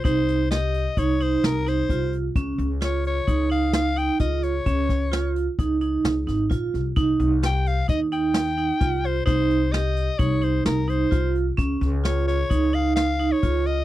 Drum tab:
HH |xxxxxxxxxx|xxxxxxxxxx|xxxxxxxxxx|xxxxxxxxxx|
SD |--o---oo--|--o---o--o|-oo---oo-o|--o---o-o-|
BD |o---o---o-|o---o---o-|oo--o---o-|o---o---o-|

HH |xxxxxxxxxx|xxxxxxxxxx|
SD |--o---o---|-ooo--o---|
BD |o---o---o-|o---o---o-|